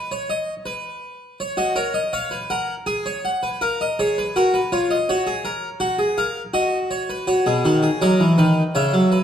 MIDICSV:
0, 0, Header, 1, 2, 480
1, 0, Start_track
1, 0, Key_signature, 5, "major"
1, 0, Tempo, 736196
1, 916, Time_signature, 4, 2, 24, 8
1, 6021, End_track
2, 0, Start_track
2, 0, Title_t, "Harpsichord"
2, 0, Program_c, 0, 6
2, 75, Note_on_c, 0, 73, 61
2, 191, Note_off_c, 0, 73, 0
2, 193, Note_on_c, 0, 75, 63
2, 343, Note_off_c, 0, 75, 0
2, 428, Note_on_c, 0, 71, 72
2, 898, Note_off_c, 0, 71, 0
2, 914, Note_on_c, 0, 73, 57
2, 1025, Note_on_c, 0, 66, 68
2, 1028, Note_on_c, 0, 75, 62
2, 1032, Note_off_c, 0, 73, 0
2, 1145, Note_on_c, 0, 70, 80
2, 1147, Note_on_c, 0, 73, 65
2, 1148, Note_off_c, 0, 66, 0
2, 1149, Note_off_c, 0, 75, 0
2, 1266, Note_on_c, 0, 75, 56
2, 1269, Note_off_c, 0, 73, 0
2, 1298, Note_off_c, 0, 70, 0
2, 1388, Note_off_c, 0, 75, 0
2, 1389, Note_on_c, 0, 77, 68
2, 1390, Note_on_c, 0, 73, 81
2, 1507, Note_on_c, 0, 71, 67
2, 1510, Note_off_c, 0, 73, 0
2, 1541, Note_off_c, 0, 77, 0
2, 1629, Note_off_c, 0, 71, 0
2, 1631, Note_on_c, 0, 70, 67
2, 1631, Note_on_c, 0, 78, 60
2, 1782, Note_off_c, 0, 78, 0
2, 1783, Note_off_c, 0, 70, 0
2, 1868, Note_on_c, 0, 68, 82
2, 1868, Note_on_c, 0, 80, 61
2, 1990, Note_off_c, 0, 68, 0
2, 1994, Note_on_c, 0, 73, 67
2, 2021, Note_off_c, 0, 80, 0
2, 2117, Note_on_c, 0, 78, 54
2, 2145, Note_off_c, 0, 73, 0
2, 2235, Note_on_c, 0, 71, 68
2, 2267, Note_off_c, 0, 78, 0
2, 2355, Note_off_c, 0, 71, 0
2, 2356, Note_on_c, 0, 70, 87
2, 2358, Note_on_c, 0, 77, 63
2, 2476, Note_off_c, 0, 77, 0
2, 2484, Note_on_c, 0, 75, 60
2, 2507, Note_off_c, 0, 70, 0
2, 2599, Note_off_c, 0, 75, 0
2, 2604, Note_on_c, 0, 68, 89
2, 2604, Note_on_c, 0, 73, 73
2, 2719, Note_off_c, 0, 73, 0
2, 2726, Note_on_c, 0, 71, 61
2, 2752, Note_off_c, 0, 68, 0
2, 2840, Note_off_c, 0, 71, 0
2, 2843, Note_on_c, 0, 70, 71
2, 2844, Note_on_c, 0, 66, 82
2, 2958, Note_off_c, 0, 70, 0
2, 2959, Note_on_c, 0, 71, 64
2, 2991, Note_off_c, 0, 66, 0
2, 3076, Note_off_c, 0, 71, 0
2, 3079, Note_on_c, 0, 65, 80
2, 3080, Note_on_c, 0, 73, 59
2, 3195, Note_off_c, 0, 73, 0
2, 3198, Note_on_c, 0, 75, 68
2, 3227, Note_off_c, 0, 65, 0
2, 3314, Note_off_c, 0, 75, 0
2, 3320, Note_on_c, 0, 73, 68
2, 3322, Note_on_c, 0, 66, 84
2, 3434, Note_on_c, 0, 68, 76
2, 3436, Note_off_c, 0, 66, 0
2, 3551, Note_off_c, 0, 68, 0
2, 3552, Note_on_c, 0, 70, 78
2, 3701, Note_off_c, 0, 70, 0
2, 3782, Note_off_c, 0, 73, 0
2, 3782, Note_on_c, 0, 66, 81
2, 3783, Note_on_c, 0, 78, 63
2, 3902, Note_on_c, 0, 68, 72
2, 3904, Note_off_c, 0, 66, 0
2, 3934, Note_off_c, 0, 78, 0
2, 4024, Note_off_c, 0, 68, 0
2, 4026, Note_on_c, 0, 77, 65
2, 4028, Note_on_c, 0, 70, 66
2, 4177, Note_off_c, 0, 77, 0
2, 4178, Note_off_c, 0, 70, 0
2, 4261, Note_on_c, 0, 66, 85
2, 4263, Note_on_c, 0, 75, 75
2, 4415, Note_off_c, 0, 75, 0
2, 4503, Note_on_c, 0, 73, 72
2, 4624, Note_off_c, 0, 73, 0
2, 4626, Note_on_c, 0, 71, 62
2, 4733, Note_off_c, 0, 66, 0
2, 4742, Note_on_c, 0, 66, 70
2, 4744, Note_on_c, 0, 73, 72
2, 4746, Note_off_c, 0, 71, 0
2, 4864, Note_off_c, 0, 66, 0
2, 4865, Note_on_c, 0, 68, 69
2, 4868, Note_on_c, 0, 47, 83
2, 4985, Note_off_c, 0, 68, 0
2, 4986, Note_off_c, 0, 47, 0
2, 4988, Note_on_c, 0, 51, 85
2, 4989, Note_on_c, 0, 66, 67
2, 5103, Note_on_c, 0, 68, 74
2, 5107, Note_off_c, 0, 66, 0
2, 5137, Note_off_c, 0, 51, 0
2, 5213, Note_off_c, 0, 73, 0
2, 5223, Note_off_c, 0, 68, 0
2, 5226, Note_on_c, 0, 54, 95
2, 5226, Note_on_c, 0, 75, 74
2, 5229, Note_on_c, 0, 70, 81
2, 5345, Note_off_c, 0, 54, 0
2, 5348, Note_on_c, 0, 52, 89
2, 5378, Note_off_c, 0, 70, 0
2, 5464, Note_on_c, 0, 51, 90
2, 5464, Note_on_c, 0, 71, 71
2, 5465, Note_off_c, 0, 52, 0
2, 5615, Note_off_c, 0, 51, 0
2, 5615, Note_off_c, 0, 71, 0
2, 5694, Note_off_c, 0, 75, 0
2, 5704, Note_on_c, 0, 73, 67
2, 5708, Note_on_c, 0, 76, 76
2, 5709, Note_on_c, 0, 49, 91
2, 5825, Note_on_c, 0, 54, 78
2, 5826, Note_off_c, 0, 49, 0
2, 5855, Note_off_c, 0, 73, 0
2, 5944, Note_on_c, 0, 71, 68
2, 5976, Note_off_c, 0, 54, 0
2, 6021, Note_off_c, 0, 71, 0
2, 6021, Note_off_c, 0, 76, 0
2, 6021, End_track
0, 0, End_of_file